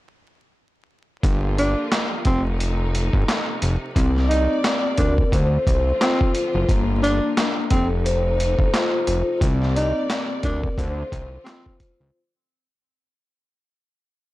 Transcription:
1.23 1.75 G1 loud
1.23 2.25 D3 medium
1.23 3.94 F3 medium
1.23 2.25 G3 medium
1.23 2.25 A#3 medium
1.23 2.25 F4 medium
1.23 kick loud
1.23 closed hi-hat loud
1.58 1.89 D4 medium
1.58 closed hi-hat medium
1.92 snare loud
1.92 clap medium
1.92 closed hi-hat medium
2.25 3.10 F1 loud
2.25 5.29 C3 medium
2.25 3.94 A3 medium
2.25 2.44 C4 medium
2.25 3.94 D#4 medium
2.25 kick loud
2.25 closed hi-hat medium
2.60 closed hi-hat medium
2.95 closed hi-hat medium
3.13 3.24 G1 medium
3.13 kick medium
3.28 snare loud
3.28 clap medium
3.28 closed hi-hat medium
3.62 3.77 F1 loud
3.62 closed hi-hat medium
3.95 4.48 C2 loud
3.95 5.31 G3 medium
3.95 5.31 A#3 medium
3.95 5.32 C4 medium
3.95 5.31 D5 medium
3.95 kick loud
3.95 closed hi-hat loud
4.16 snare soft
4.29 4.60 D#4 medium
4.29 5.32 D5 medium
4.29 closed hi-hat medium
4.64 snare loud
4.64 clap loud
4.64 closed hi-hat medium
4.97 5.24 D2 loud
4.97 5.16 D4 medium
4.97 5.32 A#4 medium
4.97 kick loud
4.97 closed hi-hat medium
5.18 kick loud
5.32 5.58 D2 loud
5.32 7.69 D3 medium
5.32 9.38 F3 medium
5.32 6.67 A3 medium
5.32 6.67 C4 medium
5.32 7.69 F4 medium
5.32 6.68 C5 loud
5.32 kick medium
5.32 closed hi-hat medium
5.67 5.92 C2 medium
5.67 kick loud
5.67 closed hi-hat medium
6.01 6.32 C4 medium
6.01 6.69 F4 medium
6.01 snare loud
6.01 clap loud
6.01 closed hi-hat medium
6.21 kick loud
6.35 closed hi-hat medium
6.55 6.65 F#1 medium
6.68 7.20 G1 loud
6.68 7.69 G3 medium
6.68 7.70 A#3 medium
6.68 7.71 A#3 medium
6.68 kick loud
6.68 closed hi-hat loud
7.01 7.70 D4 medium
7.01 7.34 D4 medium
7.01 closed hi-hat medium
7.37 snare loud
7.37 clap medium
7.37 closed hi-hat medium
7.70 8.55 F1 loud
7.70 9.40 C3 medium
7.70 9.40 A3 medium
7.70 7.89 C4 medium
7.70 9.40 D#4 medium
7.70 9.41 A4 medium
7.70 kick loud
7.70 closed hi-hat medium
8.05 9.42 C5 loud
8.05 closed hi-hat medium
8.40 closed hi-hat medium
8.59 8.70 G1 loud
8.59 kick medium
8.74 9.42 F4 medium
8.74 snare loud
8.74 clap loud
8.74 closed hi-hat medium
9.07 9.22 F1 medium
9.07 closed hi-hat medium
9.40 9.93 C2 loud
9.40 10.76 C3 medium
9.40 10.76 G3 medium
9.40 10.76 A#3 medium
9.40 10.77 C4 medium
9.40 10.76 D5 medium
9.40 kick loud
9.40 closed hi-hat loud
9.62 snare soft
9.75 10.07 D#4 medium
9.75 10.77 D5 medium
9.75 closed hi-hat medium
10.10 snare loud
10.10 clap medium
10.10 closed hi-hat medium
10.43 10.69 D2 loud
10.43 10.62 D4 medium
10.43 10.77 A#4 medium
10.43 kick loud
10.43 closed hi-hat medium
10.63 kick loud
10.77 11.03 D2 loud
10.77 12.12 D3 medium
10.77 12.12 F3 medium
10.77 12.12 A3 medium
10.77 12.12 C4 medium
10.77 12.12 F4 medium
10.77 12.14 C5 loud
10.77 kick medium
10.77 closed hi-hat medium
11.12 11.38 C2 medium
11.12 kick loud
11.12 closed hi-hat medium
11.44 11.76 C4 medium
11.44 12.14 F4 medium
11.44 snare loud
11.44 clap medium
11.44 closed hi-hat medium
11.66 kick loud
11.80 kick loud
11.80 closed hi-hat medium
12.00 12.11 C#2 medium

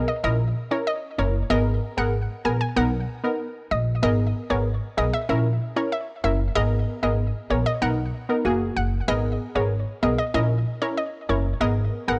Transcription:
0.08 0.20 D#5 medium
0.23 0.50 A#1 loud
0.23 0.41 C#4 medium
0.23 0.41 E4 medium
0.23 0.41 A#4 loud
0.23 0.36 D#5 medium
0.71 0.88 C#4 medium
0.71 0.88 E4 medium
0.71 0.89 A#4 medium
0.71 0.84 C#5 medium
0.87 0.99 D#5 medium
1.18 1.45 F#1 medium
1.18 1.36 C#4 medium
1.18 1.36 E4 medium
1.18 1.36 A#4 medium
1.18 1.31 C#5 medium
1.50 1.76 G#1 loud
1.50 1.94 B3 medium
1.50 1.94 G#4 medium
1.50 1.94 A#4 loud
1.50 1.75 D#5 medium
1.97 2.23 G#1 medium
1.97 2.15 B3 medium
1.97 2.15 G#4 medium
1.97 2.15 A#4 medium
1.97 2.10 F#5 medium
2.45 2.58 A#1 medium
2.45 2.62 B3 medium
2.45 2.62 G#4 medium
2.45 2.62 A#4 medium
2.45 2.57 G#5 medium
2.61 2.73 G#5 medium
2.76 3.02 B1 loud
2.76 2.94 B3 medium
2.76 2.94 D#4 medium
2.76 2.94 A#4 loud
2.76 3.21 F#5 loud
3.24 3.41 B3 medium
3.24 3.41 D#4 medium
3.24 3.41 A#4 medium
3.71 3.97 A#1 medium
3.71 3.84 D#5 medium
4.03 4.29 G#1 loud
4.03 4.46 B3 medium
4.03 4.46 G#4 medium
4.03 4.47 A#4 loud
4.03 4.28 D#5 loud
4.50 4.76 G#1 medium
4.50 4.67 B3 medium
4.50 4.67 G#4 medium
4.50 4.68 A#4 medium
4.50 4.63 C#5 medium
4.97 5.11 B1 loud
4.97 5.15 B3 medium
4.97 5.15 G#4 medium
4.97 5.15 A#4 medium
4.97 5.10 D#5 medium
5.13 5.26 E5 medium
5.29 5.55 A#1 loud
5.29 5.46 C#4 medium
5.29 5.46 E4 medium
5.29 5.46 A#4 loud
5.29 5.42 E5 medium
5.76 5.94 C#4 medium
5.76 5.94 E4 medium
5.76 5.94 A#4 medium
5.76 5.89 C#5 medium
5.92 6.05 E5 medium
6.24 6.50 F#1 medium
6.24 6.41 C#4 medium
6.24 6.41 E4 medium
6.24 6.41 A#4 medium
6.24 6.36 E5 medium
6.55 6.81 G#1 loud
6.55 6.99 B3 medium
6.55 6.99 G#4 medium
6.55 6.99 A#4 loud
6.55 6.80 D#5 loud
7.03 7.29 G#1 medium
7.03 7.20 B3 medium
7.03 7.20 G#4 medium
7.03 7.20 A#4 medium
7.03 7.15 D#5 medium
7.50 7.63 A#1 medium
7.50 7.67 B3 medium
7.50 7.67 G#4 medium
7.50 7.68 A#4 medium
7.50 7.63 C#5 medium
7.66 7.78 D#5 medium
7.82 8.08 B1 loud
7.82 7.99 B3 medium
7.82 7.99 D#4 medium
7.82 7.99 A#4 loud
7.82 8.26 F#5 loud
8.29 8.46 B3 medium
8.29 8.46 D#4 medium
8.29 8.47 A#4 medium
8.45 8.71 F#1 medium
8.45 9.03 A#3 loud
8.45 9.03 F#4 medium
8.45 9.03 G#4 loud
8.77 9.02 F#1 medium
8.77 8.89 F#5 medium
9.08 9.34 G#1 loud
9.08 9.52 B3 medium
9.08 9.52 G#4 medium
9.08 9.52 A#4 loud
9.08 9.33 D#5 loud
9.55 9.81 G#1 medium
9.55 9.72 B3 medium
9.55 9.73 G#4 medium
9.55 9.73 A#4 medium
9.55 9.68 C#5 medium
10.03 10.16 B1 medium
10.03 10.20 B3 medium
10.03 10.20 G#4 medium
10.03 10.20 A#4 medium
10.03 10.15 D#5 medium
10.18 10.31 D#5 medium
10.34 10.60 A#1 loud
10.34 10.51 C#4 medium
10.34 10.52 E4 medium
10.34 10.52 A#4 loud
10.34 10.47 D#5 medium
10.82 10.99 C#4 medium
10.82 10.99 E4 medium
10.82 10.99 A#4 medium
10.82 10.94 C#5 medium
10.97 11.10 D#5 medium
11.29 11.55 F#1 medium
11.29 11.46 C#4 medium
11.29 11.46 E4 medium
11.29 11.46 A#4 medium
11.29 11.42 C#5 medium
11.61 11.87 G#1 loud
11.61 12.04 B3 medium
11.61 12.04 G#4 medium
11.61 12.05 A#4 loud
11.61 11.86 D#5 loud
12.08 12.19 G#1 medium
12.08 12.19 B3 medium
12.08 12.19 G#4 medium
12.08 12.19 A#4 medium
12.08 12.19 F#5 medium

